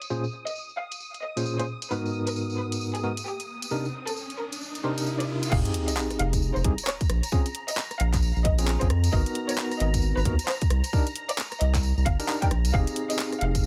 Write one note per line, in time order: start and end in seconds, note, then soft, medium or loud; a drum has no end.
0.00 5.53 D#6 medium
0.00 closed hi-hat medium
0.00 tambourine medium
0.10 0.24 A#2 medium
0.10 0.24 C#4 medium
0.10 0.24 F4 medium
0.10 0.24 G#4 medium
0.10 0.24 C5 medium
0.10 tambourine medium
0.24 tambourine soft
0.47 0.65 D#5 medium
0.47 closed hi-hat medium
0.47 tambourine medium
0.55 tambourine medium
0.69 tambourine soft
0.78 1.04 F5 medium
0.91 closed hi-hat medium
0.91 tambourine medium
1.00 tambourine medium
1.14 closed hi-hat soft
1.14 tambourine soft
1.23 1.43 D#5 medium
1.37 1.56 A#2 medium
1.37 1.56 C#4 medium
1.37 1.56 F4 medium
1.37 1.56 G#4 medium
1.37 1.56 C5 medium
1.37 closed hi-hat medium
1.37 tambourine medium
1.46 tambourine medium
1.59 1.65 A#2 medium
1.59 1.65 C#4 medium
1.59 1.65 F4 medium
1.59 1.65 G#4 medium
1.59 1.77 C5 medium
1.59 1.65 C5 medium
1.59 closed hi-hat soft
1.59 tambourine soft
1.82 closed hi-hat medium
1.82 tambourine medium
1.91 3.01 G#2 medium
1.91 3.01 B3 medium
1.91 3.01 D#4 medium
1.91 3.01 F#4 medium
1.91 3.01 A#4 medium
1.91 2.10 B4 medium
1.91 tambourine medium
1.91 riser medium
2.06 tambourine soft
2.27 2.45 A#4 medium
2.27 closed hi-hat medium
2.27 tambourine medium
2.36 tambourine medium
2.50 tambourine soft
2.58 2.78 B4 medium
2.72 closed hi-hat medium
2.72 tambourine medium
2.81 tambourine medium
2.95 3.13 G#4 medium
2.95 closed hi-hat soft
2.95 tambourine soft
3.04 3.12 G#2 medium
3.04 3.12 B3 medium
3.04 3.12 D#4 medium
3.04 3.12 F#4 medium
3.04 3.12 A#4 medium
3.17 closed hi-hat medium
3.17 tambourine medium
3.26 3.46 G4 medium
3.26 tambourine medium
3.40 closed hi-hat soft
3.40 tambourine soft
3.62 closed hi-hat medium
3.62 tambourine medium
3.71 3.85 C3 medium
3.71 3.85 D4 medium
3.71 3.85 D#4 medium
3.71 3.85 G4 medium
3.71 3.85 A#4 medium
3.71 tambourine medium
3.85 tambourine soft
4.07 4.25 A4 medium
4.07 closed hi-hat medium
4.07 tambourine medium
4.17 tambourine medium
4.30 closed hi-hat soft
4.30 tambourine soft
4.39 4.64 A#4 medium
4.52 closed hi-hat medium
4.52 tambourine medium
4.61 tambourine medium
4.75 closed hi-hat soft
4.75 tambourine soft
4.84 5.50 C3 medium
4.84 5.50 D4 medium
4.84 5.50 D#4 medium
4.84 5.50 G4 medium
4.84 5.50 A#4 medium
4.84 5.04 C5 medium
4.98 closed hi-hat medium
4.98 tambourine medium
5.06 tambourine medium
5.20 5.38 D5 medium
5.20 closed hi-hat medium
5.20 tambourine soft
5.43 closed hi-hat medium
5.43 tambourine medium
5.52 5.63 F1 loud
5.52 6.62 C4 medium
5.52 6.62 D#4 medium
5.52 6.62 G4 medium
5.52 6.62 G#4 medium
5.52 5.71 F5 loud
5.52 12.75 A#5 medium
5.52 kick loud
5.52 crash loud
5.52 tambourine medium
5.52 sub drop medium
5.65 closed hi-hat medium
5.65 tambourine soft
5.74 open hi-hat loud
5.88 6.06 D#5 medium
5.88 closed hi-hat medium
5.88 tambourine medium
5.97 clap loud
5.97 tambourine medium
6.11 cross-stick soft
6.11 closed hi-hat soft
6.11 tambourine soft
6.19 6.51 F1 medium
6.19 6.39 F5 medium
6.19 open hi-hat loud
6.33 kick medium
6.33 closed hi-hat medium
6.33 tambourine medium
6.42 tambourine medium
6.56 6.63 F1 medium
6.56 6.74 C5 medium
6.56 tambourine soft
6.64 6.76 C2 medium
6.64 6.73 C4 medium
6.64 6.73 D#4 medium
6.64 6.73 G4 medium
6.64 6.73 G#4 medium
6.64 kick loud
6.64 open hi-hat loud
6.78 closed hi-hat medium
6.78 tambourine medium
6.87 7.07 C#5 medium
6.87 clap loud
6.87 tambourine medium
7.01 kick loud
7.01 closed hi-hat medium
7.01 tambourine soft
7.10 7.21 A#1 loud
7.10 cross-stick medium
7.10 open hi-hat loud
7.23 closed hi-hat medium
7.23 tambourine medium
7.32 7.46 C4 medium
7.32 7.46 C#4 medium
7.32 7.46 F4 medium
7.32 7.46 G#4 medium
7.32 kick loud
7.32 tambourine medium
7.46 closed hi-hat medium
7.46 tambourine soft
7.55 open hi-hat loud
7.68 7.86 D#5 medium
7.68 closed hi-hat medium
7.68 tambourine medium
7.77 clap loud
7.77 tambourine medium
7.91 cross-stick soft
7.91 closed hi-hat soft
7.91 tambourine soft
8.00 8.32 A#1 medium
8.00 8.25 F5 medium
8.00 open hi-hat medium
8.13 kick medium
8.13 clap medium
8.13 closed hi-hat medium
8.13 tambourine medium
8.22 tambourine medium
8.36 8.77 A#1 loud
8.36 tambourine soft
8.45 8.64 D#5 medium
8.45 kick loud
8.45 open hi-hat loud
8.58 8.78 C4 medium
8.58 8.78 C#4 medium
8.58 8.78 F4 medium
8.58 8.78 G#4 medium
8.58 closed hi-hat medium
8.58 tambourine medium
8.67 clap loud
8.81 8.88 A#1 medium
8.81 8.87 C4 medium
8.81 8.87 C#4 medium
8.81 8.87 F4 medium
8.81 8.87 G#4 medium
8.81 8.99 C5 loud
8.81 kick loud
8.81 closed hi-hat soft
8.81 tambourine soft
8.90 9.09 F2 medium
8.90 cross-stick medium
8.90 open hi-hat loud
9.04 closed hi-hat medium
9.04 tambourine medium
9.12 9.24 G#1 loud
9.12 10.23 B3 medium
9.12 10.23 D#4 medium
9.12 10.23 F#4 medium
9.12 10.23 A#4 medium
9.12 9.32 D#5 loud
9.12 kick loud
9.12 tambourine medium
9.26 closed hi-hat medium
9.26 tambourine soft
9.35 open hi-hat loud
9.49 9.67 C#5 medium
9.49 closed hi-hat medium
9.49 tambourine medium
9.57 clap loud
9.57 tambourine medium
9.71 cross-stick soft
9.71 closed hi-hat soft
9.71 tambourine soft
9.80 10.12 G#1 medium
9.80 10.00 D#5 medium
9.80 open hi-hat medium
9.94 kick medium
9.94 closed hi-hat medium
9.94 tambourine medium
10.02 tambourine medium
10.16 10.24 G#1 medium
10.16 10.34 B4 loud
10.16 tambourine soft
10.25 10.36 D#2 medium
10.25 10.34 B3 medium
10.25 10.34 D#4 medium
10.25 10.34 F#4 medium
10.25 10.34 A#4 medium
10.25 kick loud
10.25 open hi-hat loud
10.39 closed hi-hat medium
10.39 tambourine medium
10.48 10.67 C5 medium
10.48 clap loud
10.48 tambourine medium
10.61 kick loud
10.61 closed hi-hat soft
10.61 tambourine soft
10.70 10.81 C2 loud
10.70 cross-stick medium
10.70 open hi-hat medium
10.84 closed hi-hat medium
10.84 tambourine medium
10.93 11.07 D4 medium
10.93 11.07 D#4 medium
10.93 11.07 G4 medium
10.93 11.07 A#4 loud
10.93 kick loud
10.93 tambourine medium
11.07 closed hi-hat medium
11.07 tambourine soft
11.16 open hi-hat medium
11.29 11.47 D5 loud
11.29 closed hi-hat medium
11.29 tambourine medium
11.38 clap loud
11.38 tambourine medium
11.52 cross-stick soft
11.52 closed hi-hat soft
11.52 tambourine soft
11.61 11.93 C2 medium
11.61 11.86 D#5 medium
11.61 open hi-hat medium
11.74 kick medium
11.74 clap medium
11.74 closed hi-hat medium
11.74 tambourine medium
11.83 tambourine medium
11.97 12.05 C2 loud
11.97 tambourine soft
12.06 12.17 G1 loud
12.06 12.26 F5 medium
12.06 kick loud
12.06 open hi-hat loud
12.19 12.39 D4 medium
12.19 12.39 D#4 medium
12.19 12.39 G4 medium
12.19 12.39 A#4 loud
12.19 closed hi-hat medium
12.19 tambourine medium
12.28 clap loud
12.28 tambourine medium
12.42 12.48 D4 medium
12.42 12.48 D#4 medium
12.42 12.48 G4 medium
12.42 12.48 A#4 medium
12.42 12.60 G5 loud
12.42 kick loud
12.42 closed hi-hat medium
12.42 tambourine soft
12.51 12.66 A#1 medium
12.51 cross-stick medium
12.51 open hi-hat medium
12.65 12.72 C2 loud
12.65 closed hi-hat medium
12.65 tambourine medium
12.74 12.85 F1 loud
12.74 13.66 C4 medium
12.74 13.66 D#4 medium
12.74 13.66 G4 medium
12.74 13.66 G#4 medium
12.74 13.66 F5 medium
12.74 12.93 F5 loud
12.74 kick loud
12.74 tambourine medium
12.87 closed hi-hat medium
12.87 tambourine soft
12.96 open hi-hat loud
13.10 13.28 D#5 medium
13.10 closed hi-hat medium
13.10 tambourine medium
13.19 clap loud
13.32 cross-stick soft
13.32 closed hi-hat soft
13.32 tambourine soft
13.41 13.66 F1 medium
13.41 13.61 F5 medium
13.41 open hi-hat medium
13.55 kick medium
13.55 closed hi-hat medium
13.55 tambourine medium